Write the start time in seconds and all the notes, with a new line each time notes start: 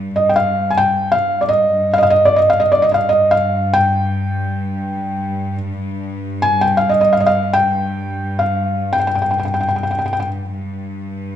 Already playing: G2
0.16 D#5
0.29 G5
0.36 F5
0.70 G#5
0.78 G5
1.12 F5
1.41 D5
1.49 D#5
1.74 G2
1.94 F5
1.98 D#5
2.03 F5
2.10 D#5
2.25 D5
2.36 D#5
2.50 F5
2.60 D#5
2.72 D5
2.82 D#5
2.92 D#5 F5
3.09 D#5
3.31 F5
3.74 G5
6.42 G#5
6.61 G5
6.77 F5
6.89 D#5
7.01 D#5
7.13 F5
7.20 D#5
7.26 F5
7.53 G5
8.39 F5
8.93 G5
9.00 G5
9.07 G5
9.15 G5
9.22 G5
9.31 G5
9.40 G5
9.45 G5
9.54 G5
9.61 G5
9.69 G5
9.76 G5
9.83 G5
9.91 G5
9.99 G5
10.06 G5
10.13 G5
10.20 G5
10.50 G2